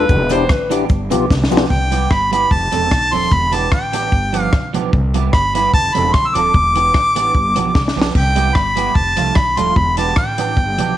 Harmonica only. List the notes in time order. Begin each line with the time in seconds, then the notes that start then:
1.70 G5
2.12 B5
2.33 B5
2.52 A5
3.14 C6
3.33 B5
3.54 A5
3.73 G5
4.41 F5
5.33 B5
5.55 B5
5.74 A5
5.94 B5
6.13 C6
6.28 E6
6.35 D6
8.16 G5
8.56 B5
8.96 A5
9.36 B5
9.58 C6
9.76 B5
9.98 A5
10.18 G5